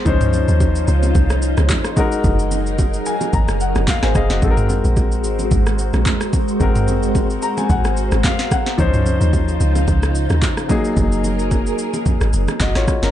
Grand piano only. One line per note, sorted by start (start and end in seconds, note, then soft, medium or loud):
0.05 1.93 F3 medium
0.05 1.93 C#4 medium
0.05 1.93 D#4 medium
0.05 1.94 C5 medium
1.96 4.11 G#3 medium
1.96 4.11 D#4 medium
1.96 3.84 F#4 medium
1.96 3.85 A#4 medium
3.06 3.32 G#5 medium
3.34 3.59 A#5 medium
3.61 3.86 F#5 medium
3.88 4.13 F5 medium
4.03 4.15 C5 medium
4.03 4.15 G#5 medium
4.15 4.30 G#4 medium
4.15 4.29 D#5 medium
4.15 4.29 F5 medium
4.31 4.42 F#4 medium
4.31 4.56 D#5 medium
4.41 6.56 G#3 medium
4.41 6.57 C4 medium
4.41 6.57 F#4 medium
4.41 4.50 A4 medium
4.51 6.61 A#4 medium
6.60 8.74 G#3 medium
6.60 8.75 C4 medium
6.60 8.75 F#4 medium
6.60 8.76 A#4 medium
7.43 7.56 A#5 medium
7.58 7.69 G#5 medium
7.70 8.21 F#5 medium
8.24 8.50 F5 medium
8.52 8.77 F#5 medium
8.78 10.65 F3 medium
8.78 10.66 C#4 medium
8.78 10.66 D#4 medium
8.78 10.67 C5 medium
10.69 12.83 F#3 medium
10.69 12.84 A#3 medium
10.69 12.57 D#4 medium
10.69 12.57 G#4 medium
12.61 12.75 F#4 medium
12.61 12.75 D#5 medium
12.76 13.02 F4 medium
12.76 13.02 C#5 medium
13.03 13.11 C#4 medium
13.03 13.11 A#4 medium